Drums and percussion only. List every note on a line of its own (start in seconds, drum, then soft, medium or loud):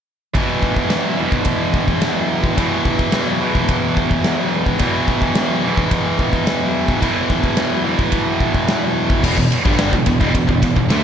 0.35 kick loud
0.35 ride bell medium
0.63 kick medium
0.76 kick medium
0.90 snare loud
0.90 ride bell medium
1.32 kick medium
1.45 kick medium
1.45 ride bell medium
1.74 kick medium
1.88 kick medium
2.02 snare loud
2.02 ride bell medium
2.44 kick medium
2.58 kick medium
2.58 ride bell medium
2.85 kick medium
2.99 kick medium
3.12 snare loud
3.12 ride bell medium
3.55 kick medium
3.69 kick medium
3.69 ride bell medium
3.97 kick medium
4.11 kick medium
4.24 snare loud
4.24 ride bell medium
4.66 kick medium
4.79 kick medium
4.79 ride bell medium
5.08 kick medium
5.22 kick medium
5.35 snare loud
5.35 ride bell medium
5.78 kick medium
5.91 kick medium
5.91 ride bell medium
6.19 kick medium
6.33 kick medium
6.47 snare loud
6.47 ride bell medium
6.88 kick medium
7.02 kick medium
7.02 ride bell medium
7.30 kick medium
7.44 kick medium
7.57 snare loud
7.57 ride bell medium
7.99 kick medium
8.12 kick medium
8.12 ride bell medium
8.40 kick medium
8.55 kick medium
8.68 snare loud
8.68 ride bell medium
9.10 kick medium
9.24 kick medium
9.24 crash loud
9.38 kick medium
9.52 ride medium
9.66 kick loud
9.79 snare loud
9.79 ride loud
9.93 kick medium
10.06 kick medium
10.06 ride medium
10.21 kick medium
10.35 kick medium
10.35 ride loud
10.49 kick medium
10.63 kick medium
10.63 ride medium
10.77 kick medium
10.90 snare loud
10.90 ride loud